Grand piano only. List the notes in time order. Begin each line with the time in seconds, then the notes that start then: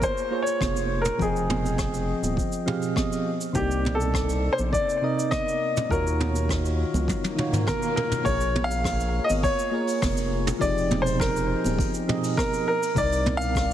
0.03 C5
0.42 C#5
1.02 A#4
1.22 G#4
3.55 G4
3.95 A4
4.53 C5
4.73 D5
5.31 D#5
5.91 A#4
7.67 A#4
7.96 A#4
8.25 C#5
8.64 F5
9.24 D#5
9.43 C#5
10.61 D5
11.02 C5
11.20 A#4
12.38 A#4
12.68 A#4
12.98 D5
13.37 F5